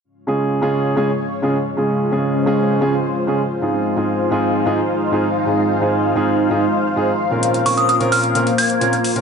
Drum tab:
HH |----------------|----------------|----------------|----------------|

HH |xxoxxxoxxxoxxxox|